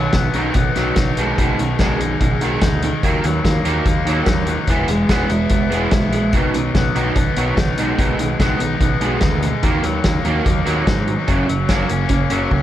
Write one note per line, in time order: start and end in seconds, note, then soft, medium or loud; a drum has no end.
0.00 0.12 B2 medium
0.00 0.76 B2 medium
0.00 0.12 D#3 medium
0.00 0.75 F#3 medium
0.13 0.29 B1 medium
0.13 0.33 B2 medium
0.13 0.33 D#3 medium
0.13 0.54 B3 medium
0.13 kick medium
0.13 snare medium
0.13 closed hi-hat medium
0.34 0.49 B1 medium
0.34 0.54 B2 medium
0.34 0.55 D#3 medium
0.34 0.55 F#3 medium
0.34 0.96 D#4 medium
0.34 closed hi-hat medium
0.54 0.70 B1 medium
0.54 0.74 B2 medium
0.54 0.74 D#3 medium
0.54 1.17 B3 medium
0.54 kick loud
0.54 closed hi-hat medium
0.76 0.91 B1 medium
0.76 0.96 B2 medium
0.76 0.96 D#3 medium
0.76 1.18 F#3 medium
0.76 0.96 F#3 medium
0.76 snare soft
0.76 closed hi-hat medium
0.96 1.11 B1 medium
0.96 1.16 B2 medium
0.96 1.16 D#3 medium
0.96 2.00 D#4 medium
0.96 kick loud
0.96 snare medium
0.96 closed hi-hat medium
1.17 1.32 B1 medium
1.17 1.38 B2 medium
1.17 1.37 B2 medium
1.17 1.38 D#3 medium
1.17 1.38 G#3 medium
1.17 closed hi-hat medium
1.38 1.53 B1 medium
1.38 2.42 B2 medium
1.38 1.58 B2 medium
1.38 1.58 D#3 medium
1.38 1.59 G#3 medium
1.38 kick medium
1.38 closed hi-hat medium
1.58 1.73 B1 medium
1.58 1.78 B2 medium
1.58 2.40 D#3 medium
1.58 1.78 D#3 medium
1.58 closed hi-hat medium
1.79 1.94 B1 medium
1.79 1.99 B2 medium
1.79 1.99 D#3 medium
1.79 2.19 G#3 medium
1.79 2.00 G#3 medium
1.79 kick medium
1.79 snare medium
1.79 closed hi-hat medium
2.00 2.15 B1 medium
2.00 2.19 B2 medium
2.00 2.19 D#3 medium
2.00 2.62 D#4 medium
2.00 closed hi-hat medium
2.20 2.35 B1 medium
2.20 2.40 B2 medium
2.20 2.40 D#3 medium
2.20 3.03 G#3 medium
2.20 kick medium
2.20 closed hi-hat medium
2.41 2.56 B1 medium
2.41 2.62 B2 medium
2.41 2.83 D#3 medium
2.41 2.62 D#3 medium
2.41 2.62 G#3 medium
2.41 closed hi-hat medium
2.61 2.91 D2 medium
2.61 2.81 B2 medium
2.61 2.82 D#3 medium
2.61 3.04 D#4 medium
2.61 kick medium
2.61 snare loud
2.61 closed hi-hat medium
2.82 3.02 B2 medium
2.82 3.02 D#3 medium
2.82 closed hi-hat medium
3.03 3.18 D#2 medium
3.03 4.07 D#3 medium
3.03 3.23 D#3 medium
3.03 3.23 F#3 medium
3.03 3.24 A#3 medium
3.03 kick medium
3.03 closed hi-hat medium
3.24 3.39 D#2 medium
3.24 3.43 D#3 medium
3.24 3.43 F#3 medium
3.24 4.06 F#3 medium
3.24 closed hi-hat medium
3.44 3.59 D#2 medium
3.44 3.63 D#3 medium
3.44 3.63 F#3 medium
3.44 3.86 A#3 medium
3.44 kick medium
3.44 snare medium
3.44 closed hi-hat medium
3.65 3.80 D#2 medium
3.65 3.85 D#3 medium
3.65 3.85 F#3 medium
3.65 3.85 A#3 medium
3.65 4.26 D#4 medium
3.65 closed hi-hat medium
3.85 4.00 D#2 medium
3.85 4.05 D#3 medium
3.85 4.05 F#3 medium
3.85 4.69 A#3 medium
3.85 kick loud
3.85 closed hi-hat medium
4.05 4.20 D#2 medium
4.05 4.26 D#3 medium
4.05 4.47 F#3 medium
4.05 4.26 F#3 medium
4.05 4.27 A#3 medium
4.05 closed hi-hat medium
4.26 4.56 D#2 medium
4.26 4.46 D#3 medium
4.26 4.46 F#3 medium
4.26 4.69 D#4 medium
4.26 kick loud
4.26 snare medium
4.26 closed hi-hat medium
4.47 4.67 D#3 medium
4.47 4.69 F#3 medium
4.47 4.67 F#3 medium
4.47 closed hi-hat medium
4.67 4.83 E1 medium
4.67 5.72 E3 medium
4.67 4.88 E3 medium
4.67 4.89 G#3 medium
4.67 4.89 B3 medium
4.67 kick medium
4.67 closed hi-hat medium
4.88 5.03 E1 medium
4.88 5.08 E3 medium
4.88 5.72 G#3 medium
4.88 5.08 G#3 medium
4.88 closed hi-hat medium
5.09 5.24 E1 medium
5.09 5.29 E3 medium
5.09 5.29 G#3 medium
5.09 5.29 B3 medium
5.09 5.50 B3 medium
5.09 kick loud
5.09 snare medium
5.09 closed hi-hat medium
5.29 5.45 E1 medium
5.29 5.49 E3 medium
5.29 5.49 G#3 medium
5.29 5.91 E4 medium
5.29 closed hi-hat medium
5.49 5.65 E1 medium
5.49 5.69 E3 medium
5.49 5.69 G#3 medium
5.49 6.76 B3 medium
5.49 kick loud
5.49 closed hi-hat medium
5.70 5.86 E1 medium
5.70 5.90 E3 medium
5.70 5.91 G#3 medium
5.70 6.12 G#3 medium
5.70 5.91 B3 medium
5.70 closed hi-hat medium
5.91 6.33 A#1 medium
5.91 6.11 E3 medium
5.91 6.11 G#3 medium
5.91 6.34 E4 medium
5.91 kick loud
5.91 snare loud
5.91 closed hi-hat medium
6.13 6.32 E3 soft
6.13 6.32 G#3 medium
6.13 6.34 G#3 medium
6.13 closed hi-hat medium
6.33 6.48 B1 medium
6.33 6.53 B2 medium
6.33 7.37 B2 medium
6.33 6.53 D#3 medium
6.33 6.54 F#3 medium
6.33 kick medium
6.33 closed hi-hat medium
6.54 6.69 B1 medium
6.54 6.73 B2 medium
6.54 6.74 D#3 medium
6.54 7.36 F#3 medium
6.54 closed hi-hat medium
6.75 6.89 B1 medium
6.75 6.94 B2 medium
6.75 6.94 D#3 medium
6.75 7.15 B3 medium
6.75 kick medium
6.75 snare medium
6.75 closed hi-hat medium
6.95 7.10 B1 medium
6.95 7.15 B2 medium
6.95 7.15 D#3 medium
6.95 7.15 F#3 medium
6.95 7.58 D#4 medium
6.95 closed hi-hat medium
7.16 7.31 B1 medium
7.16 7.35 B2 medium
7.16 7.35 D#3 medium
7.16 7.78 B3 medium
7.16 kick medium
7.16 closed hi-hat medium
7.36 7.52 B1 medium
7.36 7.56 B2 medium
7.36 7.57 D#3 medium
7.36 7.79 F#3 medium
7.36 7.57 F#3 medium
7.36 closed hi-hat medium
7.57 7.72 B1 medium
7.57 7.77 B2 medium
7.57 7.77 D#3 medium
7.57 8.61 D#4 medium
7.57 kick loud
7.57 snare loud
7.57 closed hi-hat medium
7.77 7.92 B1 medium
7.77 7.98 B2 medium
7.77 7.97 B2 medium
7.77 7.98 D#3 medium
7.77 7.98 G#3 medium
7.77 closed hi-hat medium
7.98 8.13 B1 medium
7.98 8.18 B2 medium
7.98 9.02 B2 medium
7.98 8.18 D#3 medium
7.98 8.19 G#3 medium
7.98 kick loud
7.98 closed hi-hat medium
8.19 8.34 B1 medium
8.19 8.38 B2 medium
8.19 8.39 D#3 medium
8.19 9.02 G#3 medium
8.19 closed hi-hat medium
8.40 8.54 B1 medium
8.40 8.59 B2 medium
8.40 8.60 D#3 medium
8.40 8.60 G#3 medium
8.40 8.80 B3 medium
8.40 kick medium
8.40 snare medium
8.40 closed hi-hat medium
8.60 8.75 B1 medium
8.60 8.79 B2 medium
8.60 8.79 D#3 medium
8.60 9.21 D#4 medium
8.60 closed hi-hat medium
8.81 8.96 B1 medium
8.81 9.00 B2 medium
8.81 9.00 D#3 medium
8.81 9.64 B3 medium
8.81 kick loud
8.81 closed hi-hat medium
9.01 9.16 B1 medium
9.01 9.21 B2 medium
9.01 9.21 D#3 medium
9.01 9.21 G#3 loud
9.01 9.43 G#3 medium
9.01 closed hi-hat medium
9.21 9.52 D2 medium
9.21 9.41 B2 medium
9.21 9.41 D#3 medium
9.21 9.64 D#4 medium
9.21 kick loud
9.21 snare medium
9.21 closed hi-hat medium
9.42 9.62 B2 medium
9.42 9.62 D#3 medium
9.42 9.64 G#3 medium
9.42 closed hi-hat medium
9.63 9.78 D#2 medium
9.63 9.82 D#3 medium
9.63 10.67 D#3 medium
9.63 9.83 F#3 medium
9.63 9.83 A#3 medium
9.63 kick loud
9.63 closed hi-hat medium
9.84 9.99 D#2 medium
9.84 10.03 D#3 medium
9.84 10.03 F#3 medium
9.84 10.67 F#3 medium
9.84 closed hi-hat medium
10.04 10.19 D#2 medium
10.04 10.24 D#3 medium
10.04 10.24 F#3 medium
10.04 10.47 A#3 medium
10.04 kick medium
10.04 snare medium
10.04 closed hi-hat medium
10.25 10.40 D#2 medium
10.25 10.45 D#3 medium
10.25 10.45 F#3 medium
10.25 10.45 A#3 medium
10.25 10.86 D#4 medium
10.25 closed hi-hat soft
10.46 10.61 D#2 medium
10.46 10.64 D#3 medium
10.46 10.65 F#3 medium
10.46 11.70 A#3 medium
10.46 kick loud
10.46 closed hi-hat medium
10.65 10.82 D#2 medium
10.65 10.85 D#3 medium
10.65 10.85 F#3 medium
10.65 11.08 F#3 medium
10.65 10.86 A#3 medium
10.65 closed hi-hat medium
10.87 11.16 G#2 medium
10.87 11.06 D#3 medium
10.87 11.06 F#3 medium
10.87 11.28 D#4 medium
10.87 kick loud
10.87 snare medium
10.87 closed hi-hat medium
11.07 11.26 D#3 medium
11.07 11.26 F#3 medium
11.07 11.48 F#3 medium
11.07 closed hi-hat medium
11.27 11.43 F#1 medium
11.27 11.46 F#2 medium
11.27 12.32 F#2 medium
11.27 11.46 C#3 medium
11.27 11.48 F#3 medium
11.27 kick medium
11.27 closed hi-hat medium
11.47 11.64 F#1 medium
11.47 11.67 F#2 medium
11.47 11.67 C#3 medium
11.47 12.30 F#3 medium
11.47 closed hi-hat medium
11.68 11.84 F#1 medium
11.68 11.88 F#2 medium
11.68 11.88 C#3 medium
11.68 11.89 F#3 medium
11.68 12.10 A#3 medium
11.68 kick medium
11.68 snare medium
11.68 closed hi-hat medium
11.89 12.05 F#1 medium
11.89 12.08 F#2 medium
11.89 12.08 C#3 medium
11.89 12.51 C#4 medium
11.89 closed hi-hat medium
12.09 12.25 F#1 medium
12.09 12.29 F#2 medium
12.09 12.29 C#3 medium
12.09 12.62 A#3 medium
12.09 kick loud
12.09 closed hi-hat medium
12.30 12.46 F#1 medium
12.30 12.50 F#2 medium
12.30 12.50 C#3 medium
12.30 12.50 F#3 medium
12.30 12.62 F#3 medium
12.30 closed hi-hat medium
12.51 12.62 C#2 medium
12.51 12.62 F#2 medium
12.51 12.62 C#3 medium
12.51 12.62 C#4 medium
12.51 kick medium